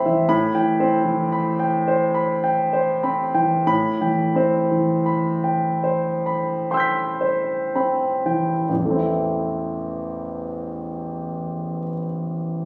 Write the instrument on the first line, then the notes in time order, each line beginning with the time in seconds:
grand piano
Already playing: A2 E3 C4 C5 E5 B5 C6 E6 A6 B6
0.05 E3 E5
0.29 A2 B5
0.55 E3 G5
0.80 C4 C5
1.05 E3
1.32 B5
1.60 G5
1.88 C5
2.14 B5
2.44 G5
2.73 C5
3.03 C4 B5
3.34 E3 G5
3.67 A2 B5
4.01 E3 G5
4.35 C4 C5
4.71 E3
5.06 B5
5.44 G5
5.84 C5
6.26 B5
6.71 G5 C6 E6
6.77 G6 B6
7.21 C5
7.75 C4 B5
8.25 E3 G5
8.69 A1
8.73 E2
8.79 E3
8.85 A3
8.90 C4
8.96 E4